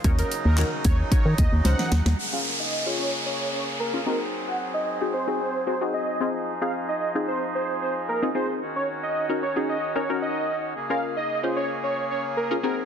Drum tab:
HH |xxx-x-x-x-x-x-x-|----------------|----------------|----------------|
CP |----x-----------|----------------|----------------|----------------|
SD |----o-------oooo|----------------|----------------|----------------|
BD |o-----o-o-o-----|----------------|----------------|----------------|

HH |----------------|----------------|
CP |----------------|----------------|
SD |----------------|----------------|
BD |----------------|----------------|